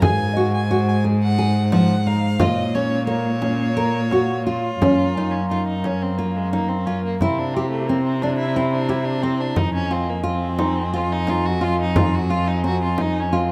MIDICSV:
0, 0, Header, 1, 7, 480
1, 0, Start_track
1, 0, Tempo, 681818
1, 19, Time_signature, 7, 3, 24, 8
1, 9517, End_track
2, 0, Start_track
2, 0, Title_t, "Celesta"
2, 0, Program_c, 0, 8
2, 0, Note_on_c, 0, 80, 49
2, 231, Note_off_c, 0, 80, 0
2, 234, Note_on_c, 0, 75, 72
2, 1597, Note_off_c, 0, 75, 0
2, 3623, Note_on_c, 0, 80, 44
2, 3791, Note_on_c, 0, 84, 43
2, 4983, Note_off_c, 0, 80, 0
2, 5127, Note_off_c, 0, 84, 0
2, 7457, Note_on_c, 0, 84, 65
2, 8812, Note_off_c, 0, 84, 0
2, 8899, Note_on_c, 0, 82, 51
2, 9149, Note_on_c, 0, 80, 56
2, 9517, Note_off_c, 0, 80, 0
2, 9517, Note_off_c, 0, 82, 0
2, 9517, End_track
3, 0, Start_track
3, 0, Title_t, "Glass harmonica"
3, 0, Program_c, 1, 92
3, 18, Note_on_c, 1, 56, 61
3, 20, Note_on_c, 1, 63, 53
3, 20, Note_on_c, 1, 72, 65
3, 1673, Note_off_c, 1, 56, 0
3, 1674, Note_off_c, 1, 63, 0
3, 1675, Note_off_c, 1, 72, 0
3, 1704, Note_on_c, 1, 73, 69
3, 1704, Note_on_c, 1, 77, 48
3, 1707, Note_on_c, 1, 58, 59
3, 3374, Note_off_c, 1, 77, 0
3, 3376, Note_off_c, 1, 73, 0
3, 3378, Note_off_c, 1, 58, 0
3, 3382, Note_on_c, 1, 82, 58
3, 3383, Note_on_c, 1, 77, 52
3, 3386, Note_on_c, 1, 70, 46
3, 5050, Note_off_c, 1, 82, 0
3, 5051, Note_off_c, 1, 77, 0
3, 5052, Note_off_c, 1, 70, 0
3, 5072, Note_on_c, 1, 72, 50
3, 5079, Note_on_c, 1, 64, 55
3, 5081, Note_on_c, 1, 82, 56
3, 6716, Note_off_c, 1, 72, 0
3, 6719, Note_off_c, 1, 64, 0
3, 6721, Note_off_c, 1, 82, 0
3, 6731, Note_on_c, 1, 75, 50
3, 6733, Note_on_c, 1, 80, 64
3, 6734, Note_on_c, 1, 65, 59
3, 9517, Note_off_c, 1, 65, 0
3, 9517, Note_off_c, 1, 75, 0
3, 9517, Note_off_c, 1, 80, 0
3, 9517, End_track
4, 0, Start_track
4, 0, Title_t, "Nylon-string guitar"
4, 0, Program_c, 2, 24
4, 16, Note_on_c, 2, 68, 81
4, 176, Note_off_c, 2, 68, 0
4, 258, Note_on_c, 2, 66, 66
4, 416, Note_off_c, 2, 66, 0
4, 498, Note_on_c, 2, 66, 75
4, 656, Note_off_c, 2, 66, 0
4, 734, Note_on_c, 2, 68, 60
4, 894, Note_off_c, 2, 68, 0
4, 975, Note_on_c, 2, 68, 71
4, 1134, Note_off_c, 2, 68, 0
4, 1212, Note_on_c, 2, 53, 72
4, 1371, Note_off_c, 2, 53, 0
4, 1454, Note_on_c, 2, 63, 72
4, 1613, Note_off_c, 2, 63, 0
4, 1693, Note_on_c, 2, 65, 80
4, 1851, Note_off_c, 2, 65, 0
4, 1936, Note_on_c, 2, 61, 64
4, 2094, Note_off_c, 2, 61, 0
4, 2162, Note_on_c, 2, 58, 75
4, 2325, Note_off_c, 2, 58, 0
4, 2405, Note_on_c, 2, 61, 61
4, 2568, Note_off_c, 2, 61, 0
4, 2651, Note_on_c, 2, 70, 78
4, 2814, Note_off_c, 2, 70, 0
4, 2903, Note_on_c, 2, 66, 65
4, 3064, Note_off_c, 2, 66, 0
4, 3143, Note_on_c, 2, 65, 65
4, 3306, Note_off_c, 2, 65, 0
4, 3395, Note_on_c, 2, 61, 71
4, 3553, Note_off_c, 2, 61, 0
4, 3642, Note_on_c, 2, 63, 66
4, 3798, Note_off_c, 2, 63, 0
4, 3881, Note_on_c, 2, 63, 62
4, 4038, Note_off_c, 2, 63, 0
4, 4121, Note_on_c, 2, 61, 58
4, 4277, Note_off_c, 2, 61, 0
4, 4355, Note_on_c, 2, 65, 71
4, 4513, Note_off_c, 2, 65, 0
4, 4596, Note_on_c, 2, 63, 65
4, 4753, Note_off_c, 2, 63, 0
4, 4835, Note_on_c, 2, 65, 68
4, 4993, Note_off_c, 2, 65, 0
4, 5081, Note_on_c, 2, 64, 80
4, 5237, Note_off_c, 2, 64, 0
4, 5326, Note_on_c, 2, 67, 72
4, 5478, Note_off_c, 2, 67, 0
4, 5557, Note_on_c, 2, 60, 66
4, 5710, Note_off_c, 2, 60, 0
4, 5794, Note_on_c, 2, 62, 65
4, 5947, Note_off_c, 2, 62, 0
4, 6027, Note_on_c, 2, 64, 73
4, 6181, Note_off_c, 2, 64, 0
4, 6260, Note_on_c, 2, 67, 70
4, 6416, Note_off_c, 2, 67, 0
4, 6500, Note_on_c, 2, 60, 74
4, 6656, Note_off_c, 2, 60, 0
4, 6733, Note_on_c, 2, 63, 72
4, 6891, Note_off_c, 2, 63, 0
4, 6974, Note_on_c, 2, 65, 63
4, 7132, Note_off_c, 2, 65, 0
4, 7205, Note_on_c, 2, 65, 71
4, 7366, Note_off_c, 2, 65, 0
4, 7452, Note_on_c, 2, 63, 68
4, 7611, Note_off_c, 2, 63, 0
4, 7698, Note_on_c, 2, 65, 83
4, 7856, Note_off_c, 2, 65, 0
4, 7942, Note_on_c, 2, 63, 67
4, 8098, Note_off_c, 2, 63, 0
4, 8174, Note_on_c, 2, 65, 69
4, 8332, Note_off_c, 2, 65, 0
4, 8425, Note_on_c, 2, 63, 72
4, 8580, Note_off_c, 2, 63, 0
4, 8661, Note_on_c, 2, 65, 69
4, 8818, Note_off_c, 2, 65, 0
4, 8898, Note_on_c, 2, 60, 70
4, 9056, Note_off_c, 2, 60, 0
4, 9139, Note_on_c, 2, 63, 62
4, 9298, Note_off_c, 2, 63, 0
4, 9382, Note_on_c, 2, 65, 73
4, 9517, Note_off_c, 2, 65, 0
4, 9517, End_track
5, 0, Start_track
5, 0, Title_t, "Violin"
5, 0, Program_c, 3, 40
5, 22, Note_on_c, 3, 80, 90
5, 353, Note_off_c, 3, 80, 0
5, 379, Note_on_c, 3, 80, 73
5, 600, Note_off_c, 3, 80, 0
5, 621, Note_on_c, 3, 80, 82
5, 727, Note_off_c, 3, 80, 0
5, 865, Note_on_c, 3, 78, 81
5, 1194, Note_off_c, 3, 78, 0
5, 1217, Note_on_c, 3, 78, 80
5, 1457, Note_on_c, 3, 77, 77
5, 1468, Note_off_c, 3, 78, 0
5, 1702, Note_on_c, 3, 75, 80
5, 1713, Note_off_c, 3, 77, 0
5, 1934, Note_on_c, 3, 73, 72
5, 1945, Note_off_c, 3, 75, 0
5, 2166, Note_off_c, 3, 73, 0
5, 2170, Note_on_c, 3, 73, 66
5, 3114, Note_off_c, 3, 73, 0
5, 3136, Note_on_c, 3, 65, 84
5, 3737, Note_on_c, 3, 61, 69
5, 3748, Note_off_c, 3, 65, 0
5, 3864, Note_off_c, 3, 61, 0
5, 3870, Note_on_c, 3, 65, 74
5, 3982, Note_off_c, 3, 65, 0
5, 3994, Note_on_c, 3, 63, 69
5, 4119, Note_on_c, 3, 61, 76
5, 4129, Note_off_c, 3, 63, 0
5, 4240, Note_on_c, 3, 60, 68
5, 4251, Note_off_c, 3, 61, 0
5, 4350, Note_on_c, 3, 58, 62
5, 4361, Note_off_c, 3, 60, 0
5, 4482, Note_on_c, 3, 56, 71
5, 4492, Note_off_c, 3, 58, 0
5, 4594, Note_off_c, 3, 56, 0
5, 4598, Note_on_c, 3, 58, 76
5, 4706, Note_on_c, 3, 60, 70
5, 4717, Note_off_c, 3, 58, 0
5, 4828, Note_on_c, 3, 61, 75
5, 4839, Note_off_c, 3, 60, 0
5, 4949, Note_off_c, 3, 61, 0
5, 4960, Note_on_c, 3, 58, 71
5, 5067, Note_off_c, 3, 58, 0
5, 5078, Note_on_c, 3, 60, 68
5, 5197, Note_on_c, 3, 62, 74
5, 5208, Note_off_c, 3, 60, 0
5, 5307, Note_on_c, 3, 60, 78
5, 5318, Note_off_c, 3, 62, 0
5, 5419, Note_off_c, 3, 60, 0
5, 5423, Note_on_c, 3, 57, 69
5, 5542, Note_on_c, 3, 58, 71
5, 5553, Note_off_c, 3, 57, 0
5, 5653, Note_off_c, 3, 58, 0
5, 5657, Note_on_c, 3, 60, 76
5, 5785, Note_on_c, 3, 62, 84
5, 5796, Note_off_c, 3, 60, 0
5, 5898, Note_off_c, 3, 62, 0
5, 5902, Note_on_c, 3, 64, 86
5, 6028, Note_on_c, 3, 60, 75
5, 6039, Note_off_c, 3, 64, 0
5, 6148, Note_on_c, 3, 62, 85
5, 6159, Note_off_c, 3, 60, 0
5, 6264, Note_on_c, 3, 64, 80
5, 6275, Note_off_c, 3, 62, 0
5, 6371, Note_on_c, 3, 62, 87
5, 6381, Note_off_c, 3, 64, 0
5, 6494, Note_on_c, 3, 60, 87
5, 6505, Note_off_c, 3, 62, 0
5, 6622, Note_on_c, 3, 62, 82
5, 6633, Note_off_c, 3, 60, 0
5, 6736, Note_on_c, 3, 63, 80
5, 6746, Note_off_c, 3, 62, 0
5, 6852, Note_off_c, 3, 63, 0
5, 6857, Note_on_c, 3, 61, 84
5, 6987, Note_on_c, 3, 60, 78
5, 6998, Note_off_c, 3, 61, 0
5, 7109, Note_on_c, 3, 58, 75
5, 7120, Note_off_c, 3, 60, 0
5, 7219, Note_off_c, 3, 58, 0
5, 7231, Note_on_c, 3, 60, 84
5, 7715, Note_on_c, 3, 65, 86
5, 7725, Note_off_c, 3, 60, 0
5, 7830, Note_on_c, 3, 63, 96
5, 7840, Note_off_c, 3, 65, 0
5, 7950, Note_on_c, 3, 65, 89
5, 7961, Note_off_c, 3, 63, 0
5, 8065, Note_on_c, 3, 66, 90
5, 8076, Note_off_c, 3, 65, 0
5, 8189, Note_on_c, 3, 65, 87
5, 8200, Note_off_c, 3, 66, 0
5, 8300, Note_off_c, 3, 65, 0
5, 8316, Note_on_c, 3, 63, 84
5, 8425, Note_on_c, 3, 65, 82
5, 8435, Note_off_c, 3, 63, 0
5, 8552, Note_on_c, 3, 66, 82
5, 8563, Note_off_c, 3, 65, 0
5, 8659, Note_on_c, 3, 65, 91
5, 8670, Note_off_c, 3, 66, 0
5, 8786, Note_on_c, 3, 63, 81
5, 8797, Note_off_c, 3, 65, 0
5, 8899, Note_off_c, 3, 63, 0
5, 8912, Note_on_c, 3, 66, 86
5, 9015, Note_off_c, 3, 66, 0
5, 9034, Note_on_c, 3, 65, 73
5, 9162, Note_on_c, 3, 63, 80
5, 9173, Note_off_c, 3, 65, 0
5, 9290, Note_on_c, 3, 61, 75
5, 9300, Note_off_c, 3, 63, 0
5, 9411, Note_on_c, 3, 60, 74
5, 9422, Note_off_c, 3, 61, 0
5, 9514, Note_off_c, 3, 60, 0
5, 9517, End_track
6, 0, Start_track
6, 0, Title_t, "Cello"
6, 0, Program_c, 4, 42
6, 13, Note_on_c, 4, 44, 82
6, 1685, Note_on_c, 4, 46, 78
6, 1695, Note_off_c, 4, 44, 0
6, 3356, Note_off_c, 4, 46, 0
6, 3386, Note_on_c, 4, 42, 64
6, 5073, Note_on_c, 4, 48, 76
6, 5084, Note_off_c, 4, 42, 0
6, 6735, Note_on_c, 4, 41, 76
6, 6745, Note_off_c, 4, 48, 0
6, 9517, Note_off_c, 4, 41, 0
6, 9517, End_track
7, 0, Start_track
7, 0, Title_t, "Frame drum"
7, 15, Note_on_c, 9, 64, 63
7, 85, Note_off_c, 9, 64, 0
7, 1213, Note_on_c, 9, 64, 50
7, 1283, Note_off_c, 9, 64, 0
7, 1455, Note_on_c, 9, 64, 19
7, 1525, Note_off_c, 9, 64, 0
7, 1687, Note_on_c, 9, 64, 67
7, 1757, Note_off_c, 9, 64, 0
7, 2163, Note_on_c, 9, 64, 21
7, 2233, Note_off_c, 9, 64, 0
7, 2408, Note_on_c, 9, 64, 48
7, 2478, Note_off_c, 9, 64, 0
7, 2651, Note_on_c, 9, 64, 18
7, 2722, Note_off_c, 9, 64, 0
7, 2896, Note_on_c, 9, 64, 37
7, 2966, Note_off_c, 9, 64, 0
7, 3391, Note_on_c, 9, 64, 64
7, 3461, Note_off_c, 9, 64, 0
7, 3870, Note_on_c, 9, 64, 20
7, 3941, Note_off_c, 9, 64, 0
7, 4113, Note_on_c, 9, 64, 41
7, 4183, Note_off_c, 9, 64, 0
7, 4599, Note_on_c, 9, 64, 38
7, 4669, Note_off_c, 9, 64, 0
7, 5074, Note_on_c, 9, 64, 43
7, 5144, Note_off_c, 9, 64, 0
7, 5553, Note_on_c, 9, 64, 16
7, 5623, Note_off_c, 9, 64, 0
7, 5789, Note_on_c, 9, 64, 40
7, 5859, Note_off_c, 9, 64, 0
7, 6257, Note_on_c, 9, 64, 39
7, 6327, Note_off_c, 9, 64, 0
7, 6732, Note_on_c, 9, 64, 54
7, 6803, Note_off_c, 9, 64, 0
7, 7209, Note_on_c, 9, 64, 19
7, 7280, Note_off_c, 9, 64, 0
7, 7454, Note_on_c, 9, 64, 52
7, 7524, Note_off_c, 9, 64, 0
7, 7936, Note_on_c, 9, 64, 43
7, 8006, Note_off_c, 9, 64, 0
7, 8419, Note_on_c, 9, 64, 70
7, 8489, Note_off_c, 9, 64, 0
7, 9137, Note_on_c, 9, 64, 54
7, 9207, Note_off_c, 9, 64, 0
7, 9517, End_track
0, 0, End_of_file